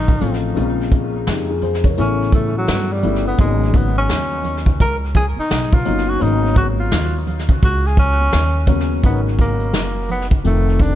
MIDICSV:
0, 0, Header, 1, 6, 480
1, 0, Start_track
1, 0, Tempo, 705882
1, 384, Time_signature, 4, 2, 24, 8
1, 7447, End_track
2, 0, Start_track
2, 0, Title_t, "Tenor saxophone"
2, 0, Program_c, 0, 66
2, 0, Note_on_c, 0, 63, 107
2, 271, Note_off_c, 0, 63, 0
2, 1357, Note_on_c, 0, 61, 85
2, 1574, Note_off_c, 0, 61, 0
2, 1594, Note_on_c, 0, 57, 84
2, 1730, Note_off_c, 0, 57, 0
2, 1751, Note_on_c, 0, 54, 83
2, 1989, Note_on_c, 0, 55, 86
2, 2000, Note_off_c, 0, 54, 0
2, 2222, Note_off_c, 0, 55, 0
2, 2227, Note_on_c, 0, 59, 85
2, 2304, Note_off_c, 0, 59, 0
2, 2313, Note_on_c, 0, 56, 99
2, 2556, Note_on_c, 0, 59, 88
2, 2566, Note_off_c, 0, 56, 0
2, 2701, Note_off_c, 0, 59, 0
2, 2705, Note_on_c, 0, 61, 108
2, 3153, Note_off_c, 0, 61, 0
2, 3272, Note_on_c, 0, 70, 107
2, 3378, Note_off_c, 0, 70, 0
2, 3512, Note_on_c, 0, 68, 99
2, 3578, Note_off_c, 0, 68, 0
2, 3667, Note_on_c, 0, 63, 101
2, 3904, Note_on_c, 0, 65, 91
2, 3914, Note_off_c, 0, 63, 0
2, 4142, Note_on_c, 0, 66, 99
2, 4152, Note_off_c, 0, 65, 0
2, 4233, Note_on_c, 0, 63, 109
2, 4244, Note_off_c, 0, 66, 0
2, 4465, Note_off_c, 0, 63, 0
2, 4469, Note_on_c, 0, 66, 92
2, 4536, Note_off_c, 0, 66, 0
2, 4622, Note_on_c, 0, 65, 86
2, 4880, Note_off_c, 0, 65, 0
2, 5197, Note_on_c, 0, 66, 98
2, 5350, Note_on_c, 0, 68, 91
2, 5360, Note_off_c, 0, 66, 0
2, 5431, Note_off_c, 0, 68, 0
2, 5434, Note_on_c, 0, 61, 125
2, 5882, Note_off_c, 0, 61, 0
2, 6158, Note_on_c, 0, 59, 86
2, 6262, Note_off_c, 0, 59, 0
2, 6399, Note_on_c, 0, 58, 86
2, 6844, Note_off_c, 0, 58, 0
2, 6878, Note_on_c, 0, 59, 83
2, 6982, Note_off_c, 0, 59, 0
2, 7114, Note_on_c, 0, 57, 86
2, 7356, Note_on_c, 0, 62, 100
2, 7366, Note_off_c, 0, 57, 0
2, 7447, Note_off_c, 0, 62, 0
2, 7447, End_track
3, 0, Start_track
3, 0, Title_t, "Grand piano"
3, 0, Program_c, 1, 0
3, 0, Note_on_c, 1, 49, 76
3, 0, Note_on_c, 1, 53, 70
3, 0, Note_on_c, 1, 57, 69
3, 0, Note_on_c, 1, 60, 68
3, 0, Note_on_c, 1, 63, 81
3, 81, Note_off_c, 1, 49, 0
3, 83, Note_off_c, 1, 53, 0
3, 84, Note_off_c, 1, 57, 0
3, 87, Note_off_c, 1, 60, 0
3, 88, Note_off_c, 1, 63, 0
3, 133, Note_on_c, 1, 49, 73
3, 138, Note_on_c, 1, 53, 68
3, 141, Note_on_c, 1, 57, 65
3, 144, Note_on_c, 1, 60, 66
3, 147, Note_on_c, 1, 65, 83
3, 359, Note_off_c, 1, 49, 0
3, 362, Note_off_c, 1, 53, 0
3, 363, Note_off_c, 1, 57, 0
3, 365, Note_off_c, 1, 60, 0
3, 366, Note_off_c, 1, 65, 0
3, 372, Note_on_c, 1, 49, 91
3, 377, Note_on_c, 1, 56, 82
3, 378, Note_on_c, 1, 58, 80
3, 380, Note_on_c, 1, 60, 84
3, 385, Note_on_c, 1, 65, 97
3, 861, Note_on_c, 1, 67, 60
3, 864, Note_off_c, 1, 65, 0
3, 867, Note_on_c, 1, 63, 52
3, 1006, Note_off_c, 1, 67, 0
3, 1009, Note_off_c, 1, 63, 0
3, 1016, Note_on_c, 1, 68, 70
3, 1020, Note_on_c, 1, 65, 62
3, 1100, Note_off_c, 1, 68, 0
3, 1102, Note_off_c, 1, 65, 0
3, 1108, Note_on_c, 1, 72, 73
3, 1111, Note_on_c, 1, 68, 59
3, 1250, Note_off_c, 1, 72, 0
3, 1251, Note_off_c, 1, 68, 0
3, 1254, Note_on_c, 1, 73, 67
3, 1261, Note_off_c, 1, 49, 0
3, 1261, Note_on_c, 1, 70, 55
3, 1263, Note_off_c, 1, 56, 0
3, 1264, Note_off_c, 1, 58, 0
3, 1265, Note_off_c, 1, 60, 0
3, 1335, Note_on_c, 1, 49, 78
3, 1340, Note_on_c, 1, 52, 71
3, 1342, Note_on_c, 1, 57, 72
3, 1348, Note_on_c, 1, 59, 70
3, 1349, Note_on_c, 1, 64, 81
3, 1483, Note_off_c, 1, 73, 0
3, 1486, Note_off_c, 1, 70, 0
3, 2002, Note_off_c, 1, 49, 0
3, 2004, Note_off_c, 1, 52, 0
3, 2005, Note_off_c, 1, 57, 0
3, 2008, Note_off_c, 1, 59, 0
3, 2009, Note_off_c, 1, 64, 0
3, 2058, Note_on_c, 1, 49, 76
3, 2060, Note_on_c, 1, 55, 69
3, 2062, Note_on_c, 1, 57, 67
3, 2066, Note_on_c, 1, 59, 69
3, 2067, Note_on_c, 1, 64, 80
3, 2281, Note_off_c, 1, 49, 0
3, 2282, Note_off_c, 1, 55, 0
3, 2284, Note_off_c, 1, 57, 0
3, 2285, Note_off_c, 1, 59, 0
3, 2286, Note_off_c, 1, 64, 0
3, 2298, Note_on_c, 1, 49, 78
3, 2301, Note_on_c, 1, 54, 70
3, 2305, Note_on_c, 1, 58, 73
3, 2308, Note_on_c, 1, 59, 67
3, 2309, Note_on_c, 1, 63, 82
3, 3184, Note_off_c, 1, 49, 0
3, 3185, Note_off_c, 1, 54, 0
3, 3187, Note_off_c, 1, 58, 0
3, 3189, Note_off_c, 1, 59, 0
3, 3189, Note_off_c, 1, 63, 0
3, 3975, Note_on_c, 1, 49, 74
3, 3979, Note_on_c, 1, 54, 70
3, 3980, Note_on_c, 1, 58, 71
3, 3984, Note_on_c, 1, 59, 70
3, 3985, Note_on_c, 1, 63, 85
3, 4199, Note_off_c, 1, 49, 0
3, 4201, Note_off_c, 1, 54, 0
3, 4203, Note_off_c, 1, 58, 0
3, 4204, Note_off_c, 1, 59, 0
3, 4205, Note_off_c, 1, 63, 0
3, 4209, Note_on_c, 1, 49, 77
3, 4212, Note_on_c, 1, 54, 72
3, 4213, Note_on_c, 1, 58, 74
3, 4219, Note_on_c, 1, 59, 70
3, 4222, Note_on_c, 1, 61, 87
3, 5100, Note_off_c, 1, 49, 0
3, 5101, Note_off_c, 1, 54, 0
3, 5102, Note_off_c, 1, 58, 0
3, 5104, Note_off_c, 1, 59, 0
3, 5106, Note_off_c, 1, 61, 0
3, 5892, Note_on_c, 1, 49, 80
3, 5897, Note_on_c, 1, 54, 71
3, 5900, Note_on_c, 1, 58, 71
3, 5903, Note_on_c, 1, 59, 73
3, 5905, Note_on_c, 1, 61, 81
3, 6119, Note_off_c, 1, 49, 0
3, 6121, Note_off_c, 1, 54, 0
3, 6122, Note_off_c, 1, 58, 0
3, 6124, Note_off_c, 1, 59, 0
3, 6125, Note_off_c, 1, 61, 0
3, 6140, Note_on_c, 1, 49, 68
3, 6140, Note_on_c, 1, 54, 67
3, 6144, Note_on_c, 1, 70, 66
3, 6148, Note_on_c, 1, 47, 67
3, 6151, Note_on_c, 1, 63, 81
3, 7025, Note_off_c, 1, 49, 0
3, 7025, Note_off_c, 1, 54, 0
3, 7027, Note_off_c, 1, 70, 0
3, 7029, Note_off_c, 1, 47, 0
3, 7030, Note_off_c, 1, 63, 0
3, 7096, Note_on_c, 1, 48, 72
3, 7099, Note_on_c, 1, 53, 66
3, 7102, Note_on_c, 1, 57, 70
3, 7105, Note_on_c, 1, 60, 67
3, 7109, Note_on_c, 1, 51, 80
3, 7447, Note_off_c, 1, 48, 0
3, 7447, Note_off_c, 1, 51, 0
3, 7447, Note_off_c, 1, 53, 0
3, 7447, Note_off_c, 1, 57, 0
3, 7447, Note_off_c, 1, 60, 0
3, 7447, End_track
4, 0, Start_track
4, 0, Title_t, "Upright bass"
4, 0, Program_c, 2, 32
4, 0, Note_on_c, 2, 33, 91
4, 133, Note_off_c, 2, 33, 0
4, 146, Note_on_c, 2, 33, 91
4, 373, Note_off_c, 2, 33, 0
4, 387, Note_on_c, 2, 34, 101
4, 842, Note_off_c, 2, 34, 0
4, 868, Note_on_c, 2, 41, 92
4, 1322, Note_off_c, 2, 41, 0
4, 1348, Note_on_c, 2, 33, 102
4, 1802, Note_off_c, 2, 33, 0
4, 1824, Note_on_c, 2, 43, 86
4, 2052, Note_off_c, 2, 43, 0
4, 2062, Note_on_c, 2, 31, 86
4, 2291, Note_off_c, 2, 31, 0
4, 2304, Note_on_c, 2, 32, 113
4, 2760, Note_off_c, 2, 32, 0
4, 2783, Note_on_c, 2, 39, 102
4, 3239, Note_off_c, 2, 39, 0
4, 3268, Note_on_c, 2, 37, 96
4, 3637, Note_off_c, 2, 37, 0
4, 3745, Note_on_c, 2, 35, 91
4, 3972, Note_off_c, 2, 35, 0
4, 3985, Note_on_c, 2, 31, 84
4, 4212, Note_off_c, 2, 31, 0
4, 4227, Note_on_c, 2, 32, 99
4, 4681, Note_off_c, 2, 32, 0
4, 4707, Note_on_c, 2, 39, 101
4, 5161, Note_off_c, 2, 39, 0
4, 5188, Note_on_c, 2, 37, 98
4, 5642, Note_off_c, 2, 37, 0
4, 5671, Note_on_c, 2, 39, 97
4, 6123, Note_off_c, 2, 39, 0
4, 6145, Note_on_c, 2, 32, 102
4, 6628, Note_off_c, 2, 32, 0
4, 6628, Note_on_c, 2, 30, 89
4, 7082, Note_off_c, 2, 30, 0
4, 7106, Note_on_c, 2, 29, 98
4, 7447, Note_off_c, 2, 29, 0
4, 7447, End_track
5, 0, Start_track
5, 0, Title_t, "Muted upright bass strokes"
5, 3658, Note_on_c, 9, 29, 50
5, 3726, Note_off_c, 9, 29, 0
5, 7447, End_track
6, 0, Start_track
6, 0, Title_t, "Drums"
6, 51, Note_on_c, 9, 82, 39
6, 56, Note_on_c, 9, 36, 89
6, 119, Note_off_c, 9, 82, 0
6, 124, Note_off_c, 9, 36, 0
6, 140, Note_on_c, 9, 42, 77
6, 145, Note_on_c, 9, 64, 70
6, 145, Note_on_c, 9, 82, 51
6, 208, Note_off_c, 9, 42, 0
6, 213, Note_off_c, 9, 64, 0
6, 213, Note_off_c, 9, 82, 0
6, 297, Note_on_c, 9, 82, 43
6, 365, Note_off_c, 9, 82, 0
6, 384, Note_on_c, 9, 42, 94
6, 391, Note_on_c, 9, 82, 65
6, 452, Note_off_c, 9, 42, 0
6, 459, Note_off_c, 9, 82, 0
6, 539, Note_on_c, 9, 82, 47
6, 607, Note_off_c, 9, 82, 0
6, 620, Note_on_c, 9, 63, 41
6, 620, Note_on_c, 9, 82, 42
6, 623, Note_on_c, 9, 36, 83
6, 624, Note_on_c, 9, 42, 70
6, 688, Note_off_c, 9, 63, 0
6, 688, Note_off_c, 9, 82, 0
6, 691, Note_off_c, 9, 36, 0
6, 692, Note_off_c, 9, 42, 0
6, 773, Note_on_c, 9, 63, 60
6, 773, Note_on_c, 9, 82, 42
6, 841, Note_off_c, 9, 63, 0
6, 841, Note_off_c, 9, 82, 0
6, 862, Note_on_c, 9, 42, 87
6, 863, Note_on_c, 9, 38, 102
6, 864, Note_on_c, 9, 82, 67
6, 930, Note_off_c, 9, 42, 0
6, 931, Note_off_c, 9, 38, 0
6, 932, Note_off_c, 9, 82, 0
6, 1020, Note_on_c, 9, 82, 44
6, 1088, Note_off_c, 9, 82, 0
6, 1099, Note_on_c, 9, 42, 60
6, 1102, Note_on_c, 9, 64, 72
6, 1102, Note_on_c, 9, 82, 52
6, 1167, Note_off_c, 9, 42, 0
6, 1170, Note_off_c, 9, 64, 0
6, 1170, Note_off_c, 9, 82, 0
6, 1252, Note_on_c, 9, 36, 87
6, 1256, Note_on_c, 9, 82, 47
6, 1320, Note_off_c, 9, 36, 0
6, 1324, Note_off_c, 9, 82, 0
6, 1342, Note_on_c, 9, 42, 96
6, 1342, Note_on_c, 9, 82, 61
6, 1410, Note_off_c, 9, 42, 0
6, 1410, Note_off_c, 9, 82, 0
6, 1498, Note_on_c, 9, 82, 43
6, 1566, Note_off_c, 9, 82, 0
6, 1581, Note_on_c, 9, 36, 91
6, 1582, Note_on_c, 9, 42, 67
6, 1582, Note_on_c, 9, 64, 65
6, 1582, Note_on_c, 9, 82, 48
6, 1649, Note_off_c, 9, 36, 0
6, 1650, Note_off_c, 9, 42, 0
6, 1650, Note_off_c, 9, 64, 0
6, 1650, Note_off_c, 9, 82, 0
6, 1733, Note_on_c, 9, 63, 59
6, 1733, Note_on_c, 9, 82, 41
6, 1801, Note_off_c, 9, 63, 0
6, 1801, Note_off_c, 9, 82, 0
6, 1817, Note_on_c, 9, 42, 94
6, 1824, Note_on_c, 9, 38, 123
6, 1824, Note_on_c, 9, 63, 43
6, 1824, Note_on_c, 9, 82, 58
6, 1885, Note_off_c, 9, 42, 0
6, 1892, Note_off_c, 9, 38, 0
6, 1892, Note_off_c, 9, 63, 0
6, 1892, Note_off_c, 9, 82, 0
6, 1973, Note_on_c, 9, 82, 42
6, 2041, Note_off_c, 9, 82, 0
6, 2056, Note_on_c, 9, 42, 73
6, 2062, Note_on_c, 9, 64, 76
6, 2062, Note_on_c, 9, 82, 54
6, 2124, Note_off_c, 9, 42, 0
6, 2130, Note_off_c, 9, 64, 0
6, 2130, Note_off_c, 9, 82, 0
6, 2213, Note_on_c, 9, 82, 48
6, 2281, Note_off_c, 9, 82, 0
6, 2303, Note_on_c, 9, 36, 98
6, 2303, Note_on_c, 9, 42, 100
6, 2304, Note_on_c, 9, 82, 68
6, 2371, Note_off_c, 9, 36, 0
6, 2371, Note_off_c, 9, 42, 0
6, 2372, Note_off_c, 9, 82, 0
6, 2452, Note_on_c, 9, 82, 45
6, 2520, Note_off_c, 9, 82, 0
6, 2532, Note_on_c, 9, 63, 41
6, 2532, Note_on_c, 9, 82, 42
6, 2542, Note_on_c, 9, 36, 91
6, 2548, Note_on_c, 9, 42, 68
6, 2600, Note_off_c, 9, 63, 0
6, 2600, Note_off_c, 9, 82, 0
6, 2610, Note_off_c, 9, 36, 0
6, 2616, Note_off_c, 9, 42, 0
6, 2686, Note_on_c, 9, 63, 61
6, 2686, Note_on_c, 9, 82, 42
6, 2754, Note_off_c, 9, 63, 0
6, 2754, Note_off_c, 9, 82, 0
6, 2779, Note_on_c, 9, 82, 71
6, 2782, Note_on_c, 9, 42, 84
6, 2784, Note_on_c, 9, 38, 104
6, 2847, Note_off_c, 9, 82, 0
6, 2850, Note_off_c, 9, 42, 0
6, 2852, Note_off_c, 9, 38, 0
6, 2931, Note_on_c, 9, 82, 42
6, 2999, Note_off_c, 9, 82, 0
6, 3016, Note_on_c, 9, 64, 71
6, 3016, Note_on_c, 9, 82, 49
6, 3019, Note_on_c, 9, 42, 68
6, 3084, Note_off_c, 9, 64, 0
6, 3084, Note_off_c, 9, 82, 0
6, 3087, Note_off_c, 9, 42, 0
6, 3171, Note_on_c, 9, 36, 90
6, 3172, Note_on_c, 9, 82, 47
6, 3239, Note_off_c, 9, 36, 0
6, 3240, Note_off_c, 9, 82, 0
6, 3257, Note_on_c, 9, 82, 62
6, 3264, Note_on_c, 9, 42, 102
6, 3266, Note_on_c, 9, 36, 104
6, 3325, Note_off_c, 9, 82, 0
6, 3332, Note_off_c, 9, 42, 0
6, 3334, Note_off_c, 9, 36, 0
6, 3413, Note_on_c, 9, 82, 45
6, 3481, Note_off_c, 9, 82, 0
6, 3498, Note_on_c, 9, 64, 65
6, 3498, Note_on_c, 9, 82, 46
6, 3501, Note_on_c, 9, 36, 92
6, 3505, Note_on_c, 9, 42, 73
6, 3566, Note_off_c, 9, 64, 0
6, 3566, Note_off_c, 9, 82, 0
6, 3569, Note_off_c, 9, 36, 0
6, 3573, Note_off_c, 9, 42, 0
6, 3648, Note_on_c, 9, 63, 58
6, 3648, Note_on_c, 9, 82, 44
6, 3716, Note_off_c, 9, 63, 0
6, 3716, Note_off_c, 9, 82, 0
6, 3738, Note_on_c, 9, 42, 88
6, 3741, Note_on_c, 9, 63, 42
6, 3741, Note_on_c, 9, 82, 61
6, 3745, Note_on_c, 9, 38, 118
6, 3806, Note_off_c, 9, 42, 0
6, 3809, Note_off_c, 9, 63, 0
6, 3809, Note_off_c, 9, 82, 0
6, 3813, Note_off_c, 9, 38, 0
6, 3889, Note_on_c, 9, 82, 42
6, 3894, Note_on_c, 9, 36, 98
6, 3957, Note_off_c, 9, 82, 0
6, 3962, Note_off_c, 9, 36, 0
6, 3976, Note_on_c, 9, 42, 72
6, 3983, Note_on_c, 9, 64, 77
6, 3983, Note_on_c, 9, 82, 54
6, 4044, Note_off_c, 9, 42, 0
6, 4051, Note_off_c, 9, 64, 0
6, 4051, Note_off_c, 9, 82, 0
6, 4133, Note_on_c, 9, 82, 47
6, 4201, Note_off_c, 9, 82, 0
6, 4219, Note_on_c, 9, 42, 95
6, 4226, Note_on_c, 9, 82, 69
6, 4287, Note_off_c, 9, 42, 0
6, 4294, Note_off_c, 9, 82, 0
6, 4372, Note_on_c, 9, 82, 45
6, 4440, Note_off_c, 9, 82, 0
6, 4457, Note_on_c, 9, 63, 41
6, 4457, Note_on_c, 9, 82, 40
6, 4462, Note_on_c, 9, 36, 91
6, 4465, Note_on_c, 9, 42, 71
6, 4525, Note_off_c, 9, 63, 0
6, 4525, Note_off_c, 9, 82, 0
6, 4530, Note_off_c, 9, 36, 0
6, 4533, Note_off_c, 9, 42, 0
6, 4611, Note_on_c, 9, 63, 60
6, 4611, Note_on_c, 9, 82, 42
6, 4679, Note_off_c, 9, 63, 0
6, 4679, Note_off_c, 9, 82, 0
6, 4702, Note_on_c, 9, 42, 84
6, 4702, Note_on_c, 9, 82, 71
6, 4703, Note_on_c, 9, 38, 109
6, 4770, Note_off_c, 9, 42, 0
6, 4770, Note_off_c, 9, 82, 0
6, 4771, Note_off_c, 9, 38, 0
6, 4856, Note_on_c, 9, 82, 42
6, 4924, Note_off_c, 9, 82, 0
6, 4940, Note_on_c, 9, 64, 77
6, 4940, Note_on_c, 9, 82, 52
6, 4941, Note_on_c, 9, 42, 67
6, 5008, Note_off_c, 9, 64, 0
6, 5008, Note_off_c, 9, 82, 0
6, 5009, Note_off_c, 9, 42, 0
6, 5092, Note_on_c, 9, 36, 90
6, 5095, Note_on_c, 9, 82, 50
6, 5160, Note_off_c, 9, 36, 0
6, 5163, Note_off_c, 9, 82, 0
6, 5178, Note_on_c, 9, 82, 67
6, 5182, Note_on_c, 9, 42, 103
6, 5185, Note_on_c, 9, 38, 38
6, 5186, Note_on_c, 9, 36, 111
6, 5246, Note_off_c, 9, 82, 0
6, 5250, Note_off_c, 9, 42, 0
6, 5253, Note_off_c, 9, 38, 0
6, 5254, Note_off_c, 9, 36, 0
6, 5336, Note_on_c, 9, 82, 46
6, 5404, Note_off_c, 9, 82, 0
6, 5421, Note_on_c, 9, 36, 90
6, 5422, Note_on_c, 9, 64, 65
6, 5422, Note_on_c, 9, 82, 47
6, 5423, Note_on_c, 9, 42, 75
6, 5489, Note_off_c, 9, 36, 0
6, 5490, Note_off_c, 9, 64, 0
6, 5490, Note_off_c, 9, 82, 0
6, 5491, Note_off_c, 9, 42, 0
6, 5572, Note_on_c, 9, 63, 61
6, 5572, Note_on_c, 9, 82, 43
6, 5640, Note_off_c, 9, 63, 0
6, 5640, Note_off_c, 9, 82, 0
6, 5654, Note_on_c, 9, 42, 100
6, 5662, Note_on_c, 9, 38, 121
6, 5664, Note_on_c, 9, 63, 47
6, 5664, Note_on_c, 9, 82, 62
6, 5722, Note_off_c, 9, 42, 0
6, 5730, Note_off_c, 9, 38, 0
6, 5732, Note_off_c, 9, 63, 0
6, 5732, Note_off_c, 9, 82, 0
6, 5813, Note_on_c, 9, 82, 41
6, 5881, Note_off_c, 9, 82, 0
6, 5897, Note_on_c, 9, 36, 94
6, 5898, Note_on_c, 9, 42, 77
6, 5907, Note_on_c, 9, 64, 75
6, 5907, Note_on_c, 9, 82, 54
6, 5965, Note_off_c, 9, 36, 0
6, 5966, Note_off_c, 9, 42, 0
6, 5975, Note_off_c, 9, 64, 0
6, 5975, Note_off_c, 9, 82, 0
6, 6056, Note_on_c, 9, 82, 48
6, 6124, Note_off_c, 9, 82, 0
6, 6142, Note_on_c, 9, 42, 95
6, 6144, Note_on_c, 9, 36, 90
6, 6149, Note_on_c, 9, 82, 66
6, 6210, Note_off_c, 9, 42, 0
6, 6212, Note_off_c, 9, 36, 0
6, 6217, Note_off_c, 9, 82, 0
6, 6296, Note_on_c, 9, 82, 44
6, 6364, Note_off_c, 9, 82, 0
6, 6379, Note_on_c, 9, 82, 41
6, 6383, Note_on_c, 9, 36, 81
6, 6385, Note_on_c, 9, 42, 68
6, 6447, Note_off_c, 9, 82, 0
6, 6451, Note_off_c, 9, 36, 0
6, 6453, Note_off_c, 9, 42, 0
6, 6526, Note_on_c, 9, 42, 50
6, 6533, Note_on_c, 9, 82, 42
6, 6594, Note_off_c, 9, 42, 0
6, 6601, Note_off_c, 9, 82, 0
6, 6618, Note_on_c, 9, 42, 82
6, 6620, Note_on_c, 9, 38, 102
6, 6686, Note_off_c, 9, 42, 0
6, 6688, Note_off_c, 9, 38, 0
6, 6778, Note_on_c, 9, 82, 41
6, 6846, Note_off_c, 9, 82, 0
6, 6858, Note_on_c, 9, 42, 59
6, 6862, Note_on_c, 9, 64, 72
6, 6862, Note_on_c, 9, 82, 50
6, 6926, Note_off_c, 9, 42, 0
6, 6930, Note_off_c, 9, 64, 0
6, 6930, Note_off_c, 9, 82, 0
6, 7006, Note_on_c, 9, 42, 50
6, 7012, Note_on_c, 9, 36, 88
6, 7017, Note_on_c, 9, 82, 46
6, 7074, Note_off_c, 9, 42, 0
6, 7080, Note_off_c, 9, 36, 0
6, 7085, Note_off_c, 9, 82, 0
6, 7099, Note_on_c, 9, 82, 61
6, 7102, Note_on_c, 9, 42, 98
6, 7167, Note_off_c, 9, 82, 0
6, 7170, Note_off_c, 9, 42, 0
6, 7257, Note_on_c, 9, 82, 45
6, 7325, Note_off_c, 9, 82, 0
6, 7341, Note_on_c, 9, 36, 83
6, 7341, Note_on_c, 9, 82, 43
6, 7343, Note_on_c, 9, 42, 67
6, 7409, Note_off_c, 9, 36, 0
6, 7409, Note_off_c, 9, 82, 0
6, 7411, Note_off_c, 9, 42, 0
6, 7447, End_track
0, 0, End_of_file